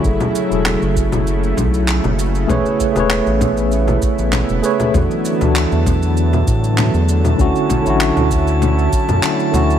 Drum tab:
SH |xxxxxxxxxxxxxxxx|xxxxxxxxxxxxxxxx|xxxxxxxxxxxxxxxx|xxxxxxxxxxxxxxxx|
CP |----x-------x---|----x-------x---|----x-------x---|----x-------x---|
CG |-O--O--O--O--O--|O--O--O--O--O--O|O--O--O--O--O--O|--O--O--O--O--O-|
BD |o-----o---o-----|o-o---o---o-----|o-----o---o-----|o-o---o---o-----|